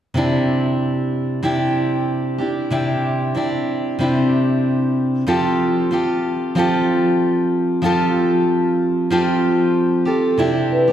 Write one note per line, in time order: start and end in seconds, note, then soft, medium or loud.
0.14 1.41 C3 medium
0.14 1.43 C4 medium
0.14 1.43 D4 medium
0.14 1.42 E4 medium
0.14 1.44 G4 medium
1.43 2.39 C3 medium
1.43 2.43 C4 medium
1.43 2.39 D4 medium
1.43 2.40 E4 medium
1.43 2.38 G4 medium
2.38 2.71 D4 soft
2.38 2.70 E4 soft
2.38 2.71 G4 soft
2.70 3.35 C3 medium
2.70 3.34 C4 medium
2.70 3.35 D4 medium
2.70 3.34 E4 medium
2.70 3.37 G4 medium
3.35 4.00 C4 soft
3.35 4.00 D4 soft
3.35 4.00 E4 soft
3.35 4.02 G4 soft
3.99 5.26 C3 medium
3.99 5.27 C4 medium
3.99 5.27 D4 medium
3.99 5.27 E4 medium
3.99 5.28 G4 medium
5.27 5.91 F3 medium
5.27 5.90 C4 medium
5.27 5.91 F4 medium
5.27 5.93 G4 medium
5.27 5.91 A4 medium
5.91 6.55 C4 soft
5.91 6.56 F4 soft
5.91 6.58 G4 medium
5.91 6.56 A4 soft
6.55 7.81 F3 medium
6.55 7.82 C4 medium
6.55 7.83 F4 medium
6.55 7.86 G4 medium
6.55 7.84 A4 medium
7.82 9.09 F3 medium
7.82 9.11 C4 medium
7.82 9.10 F4 medium
7.82 9.11 A4 medium
7.86 9.12 G4 medium
9.10 10.07 F3 medium
9.10 10.38 C4 medium
9.10 10.07 F4 medium
9.10 10.05 G4 medium
9.10 10.06 A4 medium
10.05 10.39 F4 soft
10.05 10.38 G4 soft
10.05 10.39 A4 soft
10.05 10.41 A4 medium
10.38 10.88 C3 medium
10.38 10.88 C4 medium
10.38 10.88 D4 medium
10.38 10.89 E4 medium
10.38 10.69 G4 medium
10.38 10.86 G4 medium
10.72 10.90 B4 medium
10.88 10.92 G4 soft